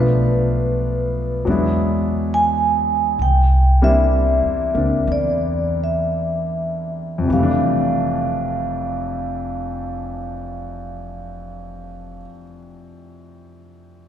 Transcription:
Already playing: B1 F3 A3 B3 D4 F4 B4
1.45 E2 F#3 G#3 B3 D4
1.50 E4
2.34 G#5
3.19 C2 G5
3.82 G3 A#3 C4 D4 E4 E5
4.43 E2
4.74 C#2 A#3 C4 D4
5.07 E2
5.12 D5
5.84 E5
7.18 F2
7.23 C3
7.28 F1 E3
7.33 G3 F5
7.39 A3
7.43 D4

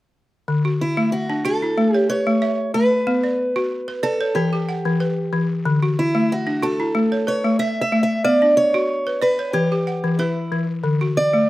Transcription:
0.48 D3
0.65 F#4
0.81 E4
0.97 A3
1.12 F#4
1.30 D4
1.45 F#4 A4
1.62 E4
1.78 A3
1.94 G4 C#5
2.10 B4 C#5
2.27 A3
2.42 E5
2.74 A3 B4
3.07 B3
3.24 D5
3.56 F#4
3.88 B4
4.03 A4 D5
4.21 C#5
4.35 E3 G4
4.53 G4
4.69 F#5
4.85 E3
5.00 B4
5.33 E3
5.65 D3
5.83 F#4
5.99 E4
6.15 A3
6.32 F#4
6.47 D4
6.63 F#4 A4
6.80 E4
6.95 A3
7.12 C#5
7.27 B4 C#5
7.45 A3
7.59 E5
7.81 E5
7.92 A3
8.03 E5
8.25 B3 D5
8.42 D4
8.57 C#5
8.74 F#4
9.07 B4
9.22 B4 D5
9.39 C#5
9.53 E3 G4
9.72 G4
9.87 F#5
10.04 E3
10.19 E4 B4
10.52 E3
10.84 D3
11.01 F#4
11.17 D5
11.33 A3

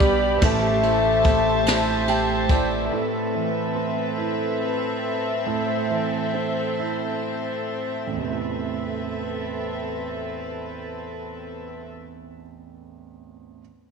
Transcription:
Already playing: B1 B2 G3 D4 G4 B4 D5 B5
0.00 G3 B3, kick, ride
0.41 A1 E3 A3 C5 E5 A5, kick, ride
0.83 A3 E4, ride
1.24 A3 C4, kick, ride
1.66 A3 E4, snare, ride
2.08 A3 G4 G5, ride
2.49 A3 E4 D5, kick, ride
2.90 A2 C4 A4 B4 E5
3.35 E3
3.75 C4
4.18 E4
5.45 A2 C5
5.90 E3
6.34 C4
6.80 E4
8.07 A1
8.12 E2
8.17 C3 C4 A4 B4 E5
8.22 A3
8.27 E4
8.32 B4

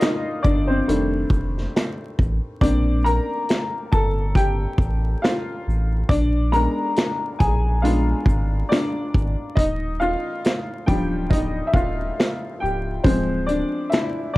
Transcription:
Already playing: D#3 A#3 D4 F4 D5 F5
0.00 D#4 D#5, finger snap, snare, closed hi-hat
0.43 G1 D4 D5, kick, shaker
0.67 C4 C5
0.87 F1 D#3 G3 A3 D4, closed hi-hat
1.30 F1, kick, shaker
1.58 snare
1.76 finger snap, snare, closed hi-hat
2.19 A1, kick, shaker
2.61 A#1 A#3 C4 D4 D5, kick, closed hi-hat
3.04 A#4 A#5, closed hi-hat, shaker
3.49 finger snap, snare, closed hi-hat
3.92 G1 A4 A5, kick, shaker
4.35 G4 G5, kick, closed hi-hat
4.78 A1, kick, shaker
5.22 F4 F5, finger snap, snare
5.26 closed hi-hat
5.67 A1, shaker
6.09 A#1 D4 D5, kick, closed hi-hat
6.52 G#3 B3 D4 A#4 A#5, closed hi-hat, shaker
6.96 finger snap, snare, closed hi-hat
7.39 A#1 G#4 G#5, kick, closed hi-hat, shaker
7.82 G#3 B3 D4 F4 F5, closed hi-hat
8.26 G#1, kick, shaker
8.69 D4 D5, finger snap, snare
8.74 closed hi-hat
9.14 G#1, kick, shaker
9.55 D#1 D#4 D#5, kick, closed hi-hat
10.00 F4 F5, shaker
10.45 finger snap, snare, closed hi-hat
10.86 D1 F3 G3 D4 G4 G5, kick, closed hi-hat, shaker
11.30 D#4 D#5, kick, closed hi-hat
11.67 E5
11.73 D#1 F4 F5, kick, shaker
12.20 finger snap, snare, closed hi-hat
12.60 C#1 G4 G5
12.66 shaker
13.04 D1 F3 G#3 C4 C5, kick, closed hi-hat
13.46 D4 D5, closed hi-hat, shaker
13.90 E4 E5, snare, closed hi-hat
13.94 finger snap
14.33 D5

